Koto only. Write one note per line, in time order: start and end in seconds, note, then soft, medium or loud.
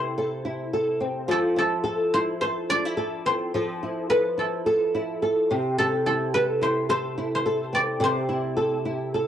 0.00 0.98 A4 medium
0.00 1.65 C5 medium
1.31 1.38 A4 medium
1.59 3.49 A4 loud
2.14 2.41 C5 medium
2.41 3.26 C5 loud
2.70 4.30 D5 loud
3.26 4.16 C5 loud
4.10 5.88 B4 medium
4.39 5.78 A4 medium
5.78 6.06 A4 medium
6.06 7.97 A4 medium
6.34 6.69 B4 loud
6.63 6.89 C5 medium
6.90 7.34 C5 loud
7.35 8.03 C5 loud
7.75 9.27 D5 loud
8.04 9.27 C5 loud